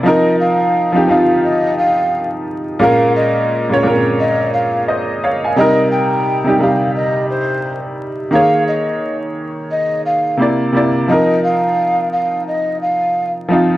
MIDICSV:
0, 0, Header, 1, 3, 480
1, 0, Start_track
1, 0, Tempo, 689655
1, 33, Time_signature, 4, 2, 24, 8
1, 9586, End_track
2, 0, Start_track
2, 0, Title_t, "Flute"
2, 0, Program_c, 0, 73
2, 41, Note_on_c, 0, 75, 94
2, 254, Note_off_c, 0, 75, 0
2, 279, Note_on_c, 0, 77, 76
2, 729, Note_off_c, 0, 77, 0
2, 762, Note_on_c, 0, 77, 71
2, 974, Note_off_c, 0, 77, 0
2, 1001, Note_on_c, 0, 75, 78
2, 1214, Note_off_c, 0, 75, 0
2, 1242, Note_on_c, 0, 77, 93
2, 1594, Note_off_c, 0, 77, 0
2, 1959, Note_on_c, 0, 77, 106
2, 2173, Note_off_c, 0, 77, 0
2, 2199, Note_on_c, 0, 75, 78
2, 2552, Note_off_c, 0, 75, 0
2, 2921, Note_on_c, 0, 75, 97
2, 3134, Note_off_c, 0, 75, 0
2, 3156, Note_on_c, 0, 77, 72
2, 3371, Note_off_c, 0, 77, 0
2, 3878, Note_on_c, 0, 75, 105
2, 4092, Note_off_c, 0, 75, 0
2, 4116, Note_on_c, 0, 79, 80
2, 4598, Note_on_c, 0, 77, 67
2, 4609, Note_off_c, 0, 79, 0
2, 4812, Note_off_c, 0, 77, 0
2, 4839, Note_on_c, 0, 75, 72
2, 5053, Note_off_c, 0, 75, 0
2, 5079, Note_on_c, 0, 72, 91
2, 5432, Note_off_c, 0, 72, 0
2, 5797, Note_on_c, 0, 77, 110
2, 6012, Note_off_c, 0, 77, 0
2, 6040, Note_on_c, 0, 75, 77
2, 6392, Note_off_c, 0, 75, 0
2, 6759, Note_on_c, 0, 75, 88
2, 6973, Note_off_c, 0, 75, 0
2, 6998, Note_on_c, 0, 77, 80
2, 7212, Note_off_c, 0, 77, 0
2, 7719, Note_on_c, 0, 75, 100
2, 7960, Note_on_c, 0, 77, 81
2, 7970, Note_off_c, 0, 75, 0
2, 8409, Note_off_c, 0, 77, 0
2, 8440, Note_on_c, 0, 77, 72
2, 8653, Note_off_c, 0, 77, 0
2, 8682, Note_on_c, 0, 75, 79
2, 8894, Note_off_c, 0, 75, 0
2, 8919, Note_on_c, 0, 77, 89
2, 9272, Note_off_c, 0, 77, 0
2, 9586, End_track
3, 0, Start_track
3, 0, Title_t, "Upright piano"
3, 0, Program_c, 1, 0
3, 0, Control_c, 1, 64, 127
3, 21, Note_on_c, 1, 53, 87
3, 31, Note_on_c, 1, 60, 85
3, 40, Note_on_c, 1, 63, 92
3, 45, Control_c, 1, 64, 0
3, 51, Note_on_c, 1, 70, 99
3, 153, Control_c, 1, 64, 127
3, 492, Note_off_c, 1, 53, 0
3, 497, Note_off_c, 1, 60, 0
3, 502, Note_off_c, 1, 63, 0
3, 507, Note_off_c, 1, 70, 0
3, 643, Note_on_c, 1, 53, 82
3, 654, Note_on_c, 1, 60, 74
3, 664, Note_on_c, 1, 63, 79
3, 674, Note_on_c, 1, 67, 94
3, 726, Note_off_c, 1, 53, 0
3, 731, Note_off_c, 1, 60, 0
3, 737, Note_off_c, 1, 63, 0
3, 741, Note_off_c, 1, 67, 0
3, 749, Note_on_c, 1, 53, 76
3, 759, Note_on_c, 1, 60, 82
3, 769, Note_on_c, 1, 63, 71
3, 778, Note_on_c, 1, 65, 87
3, 1494, Note_off_c, 1, 53, 0
3, 1499, Note_off_c, 1, 60, 0
3, 1504, Note_off_c, 1, 63, 0
3, 1509, Note_off_c, 1, 65, 0
3, 1945, Note_on_c, 1, 46, 92
3, 1954, Note_on_c, 1, 56, 88
3, 1963, Control_c, 1, 64, 0
3, 1963, Note_on_c, 1, 61, 84
3, 1974, Note_on_c, 1, 70, 100
3, 2093, Control_c, 1, 64, 127
3, 2414, Note_off_c, 1, 46, 0
3, 2419, Note_off_c, 1, 56, 0
3, 2423, Note_off_c, 1, 61, 0
3, 2429, Note_off_c, 1, 70, 0
3, 2570, Note_on_c, 1, 46, 71
3, 2581, Note_on_c, 1, 56, 76
3, 2590, Note_on_c, 1, 61, 82
3, 2599, Note_on_c, 1, 73, 93
3, 2650, Note_off_c, 1, 46, 0
3, 2655, Note_off_c, 1, 56, 0
3, 2659, Note_off_c, 1, 61, 0
3, 2664, Note_off_c, 1, 73, 0
3, 2664, Note_on_c, 1, 46, 78
3, 2674, Note_on_c, 1, 56, 78
3, 2684, Note_on_c, 1, 60, 60
3, 2693, Note_on_c, 1, 70, 86
3, 2729, Note_on_c, 1, 61, 74
3, 2731, Note_off_c, 1, 60, 0
3, 3398, Note_on_c, 1, 75, 67
3, 3403, Note_on_c, 1, 72, 52
3, 3412, Note_off_c, 1, 46, 0
3, 3417, Note_off_c, 1, 56, 0
3, 3426, Note_off_c, 1, 70, 0
3, 3444, Note_off_c, 1, 61, 0
3, 3624, Note_off_c, 1, 75, 0
3, 3627, Note_off_c, 1, 72, 0
3, 3644, Note_on_c, 1, 77, 69
3, 3648, Note_on_c, 1, 73, 61
3, 3771, Note_off_c, 1, 77, 0
3, 3773, Note_off_c, 1, 73, 0
3, 3789, Note_on_c, 1, 80, 60
3, 3793, Note_on_c, 1, 77, 55
3, 3871, Note_on_c, 1, 48, 87
3, 3879, Note_on_c, 1, 55, 84
3, 3883, Control_c, 1, 64, 0
3, 3891, Note_on_c, 1, 63, 79
3, 3901, Note_on_c, 1, 70, 99
3, 3997, Control_c, 1, 64, 127
3, 4009, Note_off_c, 1, 80, 0
3, 4011, Note_off_c, 1, 77, 0
3, 4337, Note_off_c, 1, 48, 0
3, 4342, Note_off_c, 1, 55, 0
3, 4347, Note_off_c, 1, 63, 0
3, 4352, Note_off_c, 1, 70, 0
3, 4484, Note_on_c, 1, 48, 81
3, 4494, Note_on_c, 1, 55, 69
3, 4505, Note_on_c, 1, 63, 77
3, 4516, Note_on_c, 1, 67, 82
3, 4566, Note_off_c, 1, 48, 0
3, 4572, Note_off_c, 1, 55, 0
3, 4577, Note_off_c, 1, 63, 0
3, 4582, Note_off_c, 1, 67, 0
3, 4586, Note_on_c, 1, 48, 75
3, 4596, Note_on_c, 1, 55, 68
3, 4604, Note_on_c, 1, 63, 67
3, 4615, Note_on_c, 1, 67, 83
3, 5333, Note_off_c, 1, 48, 0
3, 5337, Note_off_c, 1, 55, 0
3, 5342, Note_off_c, 1, 63, 0
3, 5347, Note_off_c, 1, 67, 0
3, 5782, Note_on_c, 1, 51, 81
3, 5793, Note_on_c, 1, 58, 67
3, 5802, Note_on_c, 1, 68, 75
3, 5803, Control_c, 1, 64, 0
3, 5813, Note_on_c, 1, 73, 87
3, 5920, Control_c, 1, 64, 127
3, 6531, Note_off_c, 1, 51, 0
3, 6536, Note_off_c, 1, 58, 0
3, 6541, Note_off_c, 1, 68, 0
3, 6546, Note_off_c, 1, 73, 0
3, 7219, Note_on_c, 1, 48, 80
3, 7230, Note_on_c, 1, 58, 76
3, 7239, Note_on_c, 1, 64, 67
3, 7242, Control_c, 1, 64, 0
3, 7251, Note_on_c, 1, 74, 78
3, 7373, Control_c, 1, 64, 127
3, 7426, Note_off_c, 1, 48, 0
3, 7431, Note_off_c, 1, 58, 0
3, 7436, Note_off_c, 1, 64, 0
3, 7441, Note_off_c, 1, 74, 0
3, 7464, Note_on_c, 1, 48, 83
3, 7474, Note_on_c, 1, 58, 69
3, 7484, Note_on_c, 1, 64, 77
3, 7493, Note_on_c, 1, 74, 88
3, 7662, Note_off_c, 1, 48, 0
3, 7667, Note_off_c, 1, 58, 0
3, 7672, Note_off_c, 1, 64, 0
3, 7677, Note_off_c, 1, 74, 0
3, 7710, Note_on_c, 1, 53, 73
3, 7720, Note_on_c, 1, 60, 75
3, 7724, Control_c, 1, 64, 0
3, 7730, Note_on_c, 1, 63, 66
3, 7740, Note_on_c, 1, 70, 80
3, 7856, Control_c, 1, 64, 127
3, 8455, Note_off_c, 1, 53, 0
3, 8460, Note_off_c, 1, 60, 0
3, 8465, Note_off_c, 1, 63, 0
3, 8469, Note_off_c, 1, 70, 0
3, 9386, Note_on_c, 1, 53, 84
3, 9397, Note_on_c, 1, 60, 76
3, 9406, Note_on_c, 1, 63, 74
3, 9416, Note_on_c, 1, 65, 94
3, 9583, Note_off_c, 1, 53, 0
3, 9586, Note_off_c, 1, 60, 0
3, 9586, Note_off_c, 1, 63, 0
3, 9586, Note_off_c, 1, 65, 0
3, 9586, End_track
0, 0, End_of_file